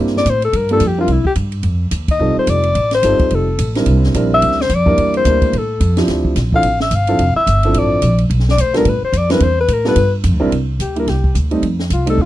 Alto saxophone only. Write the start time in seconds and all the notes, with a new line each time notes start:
0.18 D5
0.29 C5
0.44 A4
0.57 A#4
0.73 A4
0.87 G4
1.01 F4
1.12 E4
1.26 G4
2.11 D#5
2.39 C5
2.50 D5
2.94 C5
3.35 A4
4.34 E5
4.62 C5
4.75 D5
5.17 C5
5.58 A4
6.56 F5
6.82 E5
6.95 F5
7.36 E5
7.79 D5
8.51 D5
8.61 C5
8.77 A#4
8.89 B4
9.05 C5
9.17 D5
9.32 B4
9.44 C5
9.61 B4
9.73 A#4
9.88 B4
10.82 G4
10.99 A#4
11.09 G4
11.93 F4
12.10 A4
12.21 F4